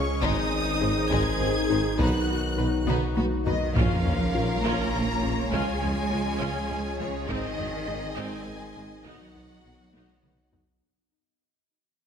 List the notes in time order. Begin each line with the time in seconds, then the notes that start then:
Already playing: C#2 C#3 F3 G#3 C#4 G#4 C#5 C#6
0.22 G#1 G#2 D#3 G#3 C4 D#4 C5 D#6, taiko
0.81 G#1 G#2 D#4 G#4 C5
1.11 G#1 G#2 G#3 D#4 G#4 G#6, taiko
1.40 G#1 G#2 C4 D#4 G#4
1.69 G#1 G#2 D#4 C5
1.98 B1 B2 F#3 B3 D#4 F#4 B4 F#6, taiko
2.57 B1 B2 D#4 B4
2.87 B1 B2 B3 D#4, taiko mid
3.17 B1 B2 B3 F#4, taiko high
3.46 B1 B2 D#3 D#4 F#4 B4 D#5, taiko low
3.75 A#1 C#3 F3 A#3 C#4 F4 A#4 C#5 F5, taiko, sub drop
4.05 A#1 C#4, taiko low
4.34 A#1 A#3 C#4 F4
4.63 A#1 A#3 C#4 F4 A#5
4.93 A#1 C#4 A#4
5.23 A#1 A#3 C#4
5.52 C#2 C#3 G#3 C#4 F4 G#4 G#5, taiko
5.81 C#2 F3 C#4, taiko low
6.10 C#2 G#3 C#4
6.40 C#2 C#3 C#4 F4
6.70 C#2 C#4
6.99 C#2 C#3 F3 G#3 C#4 C#5
7.28 G#1 D#3 G#3 C4 D#4 G#4 D#5, taiko
7.58 G#1 C4, taiko low
7.87 G#1 G#3 C4 D#4
8.17 G#1 G#3 C4 D#4 G#5
8.46 G#1 C4 G#4
8.76 G#1 G#3 C4
9.05 B1 F#3 B3 D#4 F#4 F#5, taiko
9.34 B1 B3 D#4, taiko low
9.64 B1 F#3 B3 F#4
9.93 B1 B3 D#4, taiko high
10.23 B1 B3 B4, taiko mid
10.52 B1 F#3 B3 D#4, taiko low